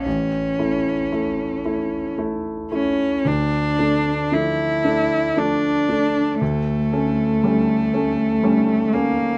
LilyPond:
<<
  \new Staff \with { instrumentName = "Cello" } { \time 3/4 \key a \phrygian \tempo 4 = 57 cis'2 r8 cis'8 | d'4 e'4 d'4 | a2~ a8 bes8 | }
  \new Staff \with { instrumentName = "Grand piano" } { \time 3/4 \key a \phrygian a,,8 <a e'>8 <a e'>8 <a e'>8 <a e'>8 <a e'>8 | d,8 <a d'>8 <f a d'>8 <a d'>8 <f a d'>8 <a d'>8 | d,8 <a cis'>8 <g a cis'>8 <a cis'>8 <g a cis'>8 <a cis'>8 | }
>>